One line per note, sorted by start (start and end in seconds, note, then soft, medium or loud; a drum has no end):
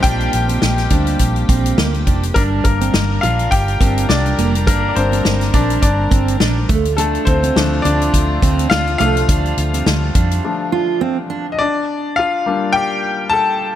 0.00 0.28 A#1 loud
0.00 0.15 G3 medium
0.00 2.32 A#3 medium
0.00 0.15 C4 medium
0.00 0.92 D4 medium
0.00 0.32 D4 medium
0.00 2.38 D#4 medium
0.00 2.33 F4 medium
0.00 2.38 F4 medium
0.00 2.32 G4 medium
0.00 2.38 D#5 medium
0.00 2.38 F5 medium
0.00 1.15 G5 loud
0.00 kick loud
0.00 closed hi-hat medium
0.05 1.17 G4 medium
0.20 closed hi-hat soft
0.33 0.57 A#1 medium
0.33 closed hi-hat medium
0.48 0.61 C4 medium
0.48 closed hi-hat medium
0.62 0.86 A#1 medium
0.62 snare loud
0.78 snare soft
0.78 closed hi-hat soft
0.90 1.15 D2 medium
0.90 1.17 G3 soft
0.90 1.17 C4 soft
0.90 1.18 D4 medium
0.90 1.17 D4 soft
0.90 kick medium
0.90 closed hi-hat medium
1.07 closed hi-hat soft
1.19 1.44 A#1 medium
1.19 kick medium
1.19 closed hi-hat medium
1.36 closed hi-hat soft
1.49 1.73 A#1 medium
1.49 1.77 C4 medium
1.49 kick medium
1.49 closed hi-hat medium
1.66 closed hi-hat soft
1.78 2.08 D2 medium
1.78 1.93 A#3 medium
1.78 snare loud
1.94 closed hi-hat soft
2.07 2.31 F1 medium
2.07 2.22 D4 medium
2.07 kick medium
2.07 closed hi-hat medium
2.23 closed hi-hat soft
2.34 2.60 G1 loud
2.34 2.75 G3 medium
2.34 6.65 G3 medium
2.34 2.43 A#3 medium
2.34 6.65 D4 medium
2.34 2.64 D4 medium
2.34 2.76 D4 medium
2.34 2.41 A#4 medium
2.34 6.65 A#4 medium
2.34 kick loud
2.34 closed hi-hat medium
2.64 2.89 G1 medium
2.64 3.19 A#3 medium
2.64 3.24 A#4 medium
2.64 kick medium
2.64 closed hi-hat medium
2.81 2.93 C4 medium
2.81 closed hi-hat medium
2.94 3.18 G1 medium
2.94 snare loud
3.21 3.47 A#1 medium
3.21 3.50 D4 medium
3.21 3.50 F4 medium
3.21 3.52 F5 medium
3.21 closed hi-hat medium
3.39 closed hi-hat soft
3.51 3.75 G1 loud
3.51 4.06 G4 medium
3.51 4.11 G5 medium
3.51 kick medium
3.51 closed hi-hat medium
3.68 closed hi-hat soft
3.80 4.04 G1 loud
3.80 4.06 G3 soft
3.80 4.07 A#3 soft
3.80 4.08 C4 medium
3.80 4.07 D4 soft
3.80 kick medium
3.80 closed hi-hat medium
3.98 closed hi-hat soft
4.09 4.33 C2 medium
4.09 4.25 D4 medium
4.09 4.64 D4 medium
4.09 4.69 D5 medium
4.09 snare loud
4.26 closed hi-hat soft
4.38 4.68 F1 medium
4.38 4.54 A#3 medium
4.38 closed hi-hat medium
4.55 closed hi-hat medium
4.67 4.91 G1 loud
4.67 4.89 A#3 medium
4.67 4.95 D4 medium
4.67 4.90 A#4 medium
4.67 kick loud
4.67 closed hi-hat medium
4.89 4.96 D5 medium
4.95 5.20 G1 medium
4.95 5.36 G3 soft
4.95 5.36 A#3 soft
4.95 5.50 C4 medium
4.95 5.36 D4 medium
4.95 5.50 C5 medium
4.95 closed hi-hat medium
5.12 5.24 C4 medium
5.12 closed hi-hat medium
5.25 5.49 G1 medium
5.25 snare loud
5.41 snare soft
5.41 closed hi-hat soft
5.54 5.78 A#1 medium
5.54 5.81 D4 medium
5.54 5.81 D5 medium
5.54 kick medium
5.54 closed hi-hat medium
5.70 closed hi-hat soft
5.82 6.06 G1 medium
5.82 6.66 D4 medium
5.82 6.65 D5 medium
5.82 kick medium
5.82 closed hi-hat medium
6.11 6.35 G1 medium
6.11 6.39 C4 medium
6.11 kick medium
6.11 closed hi-hat medium
6.28 closed hi-hat medium
6.40 6.64 A#1 medium
6.40 6.56 D4 medium
6.40 snare loud
6.68 7.17 D2 loud
6.68 11.55 D3 medium
6.68 8.97 A3 medium
6.68 6.84 A3 medium
6.68 11.55 F4 medium
6.68 kick loud
6.68 closed hi-hat medium
6.85 closed hi-hat soft
6.97 7.25 A3 medium
6.97 7.25 D4 medium
6.97 7.27 A4 medium
6.97 closed hi-hat medium
7.15 closed hi-hat soft
7.25 7.51 D2 medium
7.25 7.81 C4 medium
7.25 7.86 C5 medium
7.25 kick medium
7.25 closed hi-hat medium
7.43 7.55 C4 medium
7.43 closed hi-hat medium
7.56 7.80 D2 medium
7.56 7.96 F3 medium
7.56 7.96 A3 medium
7.56 7.84 D4 medium
7.56 snare loud
7.82 8.09 D2 medium
7.82 8.12 D4 medium
7.82 8.39 D4 medium
7.82 8.37 D5 medium
7.82 closed hi-hat medium
8.02 closed hi-hat soft
8.14 8.37 D2 medium
8.14 kick medium
8.14 closed hi-hat medium
8.42 8.66 D2 medium
8.42 8.70 C4 medium
8.42 kick medium
8.42 closed hi-hat medium
8.59 closed hi-hat medium
8.70 8.95 D2 medium
8.70 8.87 D4 medium
8.70 8.98 F4 medium
8.70 8.97 F5 loud
8.70 snare loud
8.87 closed hi-hat soft
8.98 9.24 C2 medium
8.98 9.82 F3 medium
8.98 11.57 G3 medium
8.98 9.15 A3 medium
8.98 9.82 A3 medium
8.98 9.83 D4 medium
8.98 10.41 F4 medium
8.98 10.39 F5 loud
8.98 closed hi-hat medium
9.17 closed hi-hat medium
9.29 9.52 D2 loud
9.29 9.56 D4 medium
9.29 kick loud
9.29 closed hi-hat medium
9.46 closed hi-hat soft
9.57 9.81 D2 loud
9.57 closed hi-hat medium
9.74 9.86 C4 medium
9.74 closed hi-hat medium
9.86 10.10 D2 medium
9.86 snare loud
10.15 10.39 F2 medium
10.15 10.42 D4 medium
10.15 kick medium
10.15 closed hi-hat medium
10.31 closed hi-hat soft
10.44 10.70 F3 soft
10.44 10.70 A3 soft
10.44 10.70 D4 medium
10.72 11.00 F4 medium
11.01 11.17 C4 medium
11.30 11.46 D4 medium
11.52 11.59 D#5 medium
11.59 12.14 D4 medium
11.59 12.13 D5 medium
12.16 12.72 F4 medium
12.16 12.76 F5 medium
12.46 12.85 G3 medium
12.46 12.86 A#3 soft
12.46 12.86 D4 medium
12.73 13.29 G4 medium
12.73 13.27 G5 loud
13.30 13.75 A4 medium
13.30 13.75 A5 loud